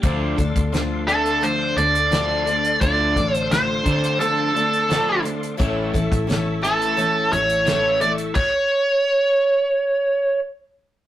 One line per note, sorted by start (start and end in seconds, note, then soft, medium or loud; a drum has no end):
0.02 0.35 D2 medium
0.02 0.36 D3 medium
0.02 0.38 D3 medium
0.02 0.38 F3 medium
0.02 0.36 A3 medium
0.02 0.39 C4 medium
0.02 0.36 D4 medium
0.02 0.38 D4 medium
0.02 8.33 A4 medium
0.02 0.36 A4 medium
0.02 5.55 F5 medium
0.02 5.55 C6 medium
0.02 5.55 D6 medium
0.02 kick loud
0.02 closed hi-hat medium
0.37 0.54 D2 medium
0.37 0.69 D3 medium
0.37 0.69 A3 medium
0.37 0.72 C4 soft
0.37 0.73 D4 medium
0.37 0.72 A4 medium
0.37 kick medium
0.37 closed hi-hat medium
0.56 1.73 D2 medium
0.56 kick medium
0.56 closed hi-hat medium
0.72 1.04 D3 medium
0.72 1.07 F3 medium
0.72 1.04 A3 medium
0.72 1.08 C4 medium
0.72 1.07 D4 medium
0.72 1.06 A4 medium
0.72 snare medium
0.72 closed hi-hat medium
1.07 1.40 D3 medium
1.07 1.40 A3 medium
1.07 1.41 C4 soft
1.07 1.42 D4 soft
1.07 1.40 D4 medium
1.07 1.42 A4 soft
1.07 1.43 A4 medium
1.07 closed hi-hat medium
1.26 closed hi-hat medium
1.41 1.76 D3 medium
1.41 1.74 D3 medium
1.41 1.77 F3 medium
1.41 1.74 A3 medium
1.41 1.77 C4 medium
1.41 1.77 D4 medium
1.41 1.76 A4 medium
1.41 1.77 C5 medium
1.41 closed hi-hat medium
1.77 2.77 D2 medium
1.77 2.08 D3 medium
1.77 2.09 A3 medium
1.77 2.11 C4 soft
1.77 2.12 D4 soft
1.77 2.12 A4 medium
1.77 2.80 D5 medium
1.77 closed hi-hat medium
1.95 closed hi-hat medium
2.11 2.44 D3 medium
2.11 2.46 F3 medium
2.11 2.44 A3 medium
2.11 2.46 C4 medium
2.11 2.44 D4 medium
2.11 2.46 D4 medium
2.11 2.45 A4 medium
2.11 snare loud
2.11 closed hi-hat medium
2.46 2.78 D3 medium
2.46 2.78 A3 medium
2.46 2.80 C4 soft
2.46 2.81 D4 soft
2.46 2.81 A4 soft
2.46 closed hi-hat medium
2.65 closed hi-hat medium
2.80 3.13 D2 medium
2.80 3.13 D3 medium
2.80 3.16 D3 medium
2.80 3.16 F3 medium
2.80 3.13 A3 medium
2.80 3.16 C4 medium
2.80 3.14 D4 medium
2.80 3.17 D4 medium
2.80 3.15 A4 medium
2.80 3.34 D5 loud
2.80 kick loud
2.80 closed hi-hat medium
3.16 3.82 A1 medium
3.16 3.47 D3 medium
3.16 3.47 A3 medium
3.16 3.50 C4 soft
3.16 3.51 D4 soft
3.16 3.51 A4 medium
3.16 kick medium
3.16 closed hi-hat medium
3.34 3.52 C5 loud
3.34 closed hi-hat medium
3.50 3.81 D3 medium
3.50 3.86 F3 medium
3.50 3.82 A3 medium
3.50 3.86 C4 medium
3.50 3.85 D4 medium
3.50 3.84 A4 medium
3.50 4.20 C5 medium
3.50 snare loud
3.50 closed hi-hat medium
3.84 4.17 D3 medium
3.84 5.20 D3 medium
3.84 4.17 A3 medium
3.84 4.20 C4 soft
3.84 4.18 D4 medium
3.84 4.20 D4 soft
3.84 4.20 A4 soft
3.84 kick medium
3.84 closed hi-hat medium
4.04 closed hi-hat medium
4.19 4.51 D3 medium
4.19 4.55 D3 medium
4.19 4.55 F3 medium
4.19 4.51 A3 medium
4.19 4.55 C4 medium
4.19 4.55 D4 medium
4.19 5.20 A4 medium
4.19 4.53 A4 medium
4.19 closed hi-hat medium
4.54 4.86 D3 medium
4.54 4.86 A3 medium
4.54 4.88 C4 soft
4.54 4.89 D4 soft
4.54 4.89 A4 soft
4.54 closed hi-hat medium
4.73 closed hi-hat medium
4.88 5.22 D3 medium
4.88 5.24 F3 medium
4.88 5.22 A3 medium
4.88 5.24 C4 medium
4.88 5.22 D4 medium
4.88 5.23 D4 medium
4.88 5.22 A4 medium
4.88 snare loud
4.88 closed hi-hat medium
5.23 5.55 D3 medium
5.23 5.55 A3 medium
5.23 5.58 C4 soft
5.23 5.58 D4 medium
5.23 5.58 A4 medium
5.23 closed hi-hat medium
5.43 closed hi-hat medium
5.57 5.91 A1 loud
5.57 5.93 A2 medium
5.57 5.92 A2 medium
5.57 5.93 E3 medium
5.57 5.92 E3 medium
5.57 5.93 A3 medium
5.57 5.92 A3 medium
5.57 5.93 C#4 medium
5.57 5.93 E4 medium
5.57 5.92 A4 medium
5.57 8.34 E5 medium
5.57 8.34 C#6 medium
5.57 8.34 E6 medium
5.57 kick loud
5.57 closed hi-hat medium
5.93 6.10 A1 medium
5.93 6.25 A2 medium
5.93 6.25 E3 medium
5.93 6.26 A3 soft
5.93 6.27 C#4 medium
5.93 6.28 E4 medium
5.93 6.28 A4 medium
5.93 kick medium
5.93 closed hi-hat medium
6.12 7.29 A1 medium
6.12 kick medium
6.12 closed hi-hat medium
6.27 6.59 A2 medium
6.27 6.60 E3 medium
6.27 6.62 A3 medium
6.27 6.62 C#4 medium
6.27 6.61 E4 medium
6.27 6.60 A4 medium
6.27 snare loud
6.27 closed hi-hat medium
6.62 6.96 A2 medium
6.62 6.96 E3 medium
6.62 6.96 A3 soft
6.62 6.96 A3 medium
6.62 6.96 C#4 soft
6.62 6.97 E4 soft
6.62 6.97 A4 soft
6.62 7.32 A4 medium
6.62 closed hi-hat medium
6.82 closed hi-hat medium
6.97 7.32 A2 medium
6.97 7.29 A2 medium
6.97 7.32 E3 medium
6.97 7.29 E3 medium
6.97 7.32 A3 medium
6.97 7.32 C#4 medium
6.97 7.31 E4 medium
6.97 7.30 A4 medium
6.97 closed hi-hat medium
7.31 8.33 A1 medium
7.31 7.63 A2 medium
7.31 7.64 E3 medium
7.31 7.64 A3 soft
7.31 7.65 C#4 soft
7.31 7.66 E4 medium
7.31 7.66 A4 medium
7.31 8.01 C#5 medium
7.31 closed hi-hat medium
7.50 closed hi-hat medium
7.65 7.99 A2 medium
7.65 7.99 E3 medium
7.65 8.01 A3 medium
7.65 8.00 A3 loud
7.65 8.01 C#4 medium
7.65 8.00 E4 medium
7.65 7.99 A4 medium
7.65 snare loud
7.65 closed hi-hat medium
8.00 8.32 A2 medium
8.00 8.33 E3 medium
8.00 8.37 A3 soft
8.00 8.36 E4 soft
8.00 8.36 A4 medium
8.00 8.11 D5 medium
8.00 closed hi-hat medium
8.18 closed hi-hat medium
8.35 10.39 C#5 medium
8.35 kick loud
8.35 crash medium